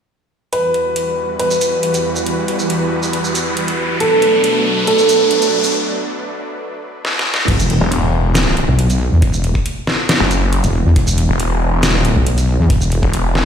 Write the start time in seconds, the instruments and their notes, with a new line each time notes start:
0.53 supersaw synth E2 E3 G3 F#4 B4, grand piano B4, closed hi-hat, riser
0.74 closed hi-hat
0.96 closed hi-hat
1.39 grand piano B4, closed hi-hat
1.51 shaker
1.61 closed hi-hat, shaker
1.83 closed hi-hat
1.94 closed hi-hat, shaker
2.16 shaker
2.26 closed hi-hat
2.48 closed hi-hat
2.59 shaker
2.70 closed hi-hat
3.03 shaker
3.13 closed hi-hat
3.25 shaker
3.35 closed hi-hat, shaker
3.57 closed hi-hat
3.68 closed hi-hat
4.00 supersaw synth B2 F#3 A3 D4, grand piano A4, closed hi-hat
4.22 closed hi-hat
4.44 closed hi-hat
4.87 grand piano A4, closed hi-hat
4.99 shaker
5.09 closed hi-hat, shaker
5.31 closed hi-hat
5.42 closed hi-hat, shaker
5.64 shaker
7.05 snare
7.19 snare
7.34 snare
7.48 wobble bass E1, kick, closed hi-hat, crash, impact
7.59 shaker
7.70 closed hi-hat
7.81 detuned saw bass E1
7.92 closed hi-hat
8.35 snare, closed hi-hat, shaker
8.57 closed hi-hat
8.68 wobble bass B1
8.79 closed hi-hat
8.90 closed hi-hat, shaker
9.12 wobble bass E2
9.22 wobble bass E1, kick, closed hi-hat
9.33 shaker
9.44 closed hi-hat
9.55 kick
9.66 closed hi-hat
9.87 snare
10.09 snare, closed hi-hat
10.20 detuned saw bass F#1
10.31 closed hi-hat, shaker
10.53 closed hi-hat
10.64 wobble bass E1, closed hi-hat, shaker
10.86 wobble bass E2
10.96 wobble bass E1, kick, closed hi-hat
11.07 shaker
11.18 closed hi-hat
11.29 detuned saw bass E1
11.40 closed hi-hat
11.83 snare, closed hi-hat, shaker
11.89 detuned saw bass D#1
12.05 closed hi-hat
12.16 wobble bass B1
12.27 closed hi-hat
12.38 closed hi-hat, shaker
12.59 wobble bass E2
12.70 wobble bass E1, kick, closed hi-hat
12.81 shaker
12.92 closed hi-hat
13.03 detuned saw bass E1, kick
13.14 closed hi-hat
13.35 snare